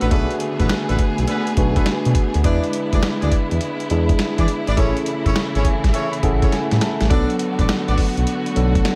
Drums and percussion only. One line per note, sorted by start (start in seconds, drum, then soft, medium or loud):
0.01 closed hi-hat medium
0.11 kick loud
0.11 closed hi-hat medium
0.31 closed hi-hat soft
0.40 closed hi-hat medium
0.60 kick medium
0.60 closed hi-hat soft
0.69 snare loud
0.69 closed hi-hat medium
0.89 closed hi-hat soft
0.98 kick medium
0.98 closed hi-hat medium
1.18 closed hi-hat medium
1.28 closed hi-hat medium
1.47 closed hi-hat medium
1.57 kick medium
1.57 closed hi-hat medium
1.76 kick loud
1.76 closed hi-hat medium
1.86 snare loud
1.86 closed hi-hat medium
2.05 closed hi-hat medium
2.15 kick medium
2.15 closed hi-hat medium
2.34 closed hi-hat medium
2.44 kick loud
2.44 closed hi-hat medium
2.64 closed hi-hat soft
2.73 closed hi-hat medium
2.93 kick loud
2.93 closed hi-hat medium
3.03 snare loud
3.03 closed hi-hat medium
3.22 closed hi-hat soft
3.31 kick medium
3.31 closed hi-hat medium
3.51 closed hi-hat medium
3.61 closed hi-hat medium
3.80 closed hi-hat medium
3.90 closed hi-hat medium
4.09 kick medium
4.09 closed hi-hat medium
4.19 snare loud
4.19 closed hi-hat medium
4.38 kick medium
4.38 closed hi-hat medium
4.48 closed hi-hat medium
4.67 closed hi-hat medium
4.77 kick loud
4.77 closed hi-hat medium
4.97 closed hi-hat soft
5.06 closed hi-hat medium
5.26 kick medium
5.26 closed hi-hat soft
5.36 snare loud
5.36 closed hi-hat medium
5.55 closed hi-hat soft
5.64 kick medium
5.64 closed hi-hat medium
5.84 kick medium
5.84 snare medium
5.84 closed hi-hat medium
5.94 closed hi-hat medium
6.13 closed hi-hat medium
6.23 kick medium
6.23 closed hi-hat medium
6.42 kick loud
6.42 closed hi-hat medium
6.52 snare medium
6.52 closed hi-hat medium
6.71 snare medium
6.71 closed hi-hat medium
6.81 snare medium
6.81 closed hi-hat medium
7.01 snare medium
7.01 closed hi-hat soft
7.10 kick loud
7.10 closed hi-hat medium
7.30 closed hi-hat soft
7.39 closed hi-hat medium
7.59 kick medium
7.59 closed hi-hat medium
7.69 snare loud
7.69 closed hi-hat medium
7.88 closed hi-hat soft
7.98 kick medium
7.98 open hi-hat medium
8.17 closed hi-hat medium
8.27 closed hi-hat medium
8.46 closed hi-hat medium
8.56 closed hi-hat medium
8.75 kick loud
8.75 closed hi-hat medium
8.85 snare loud
8.85 closed hi-hat medium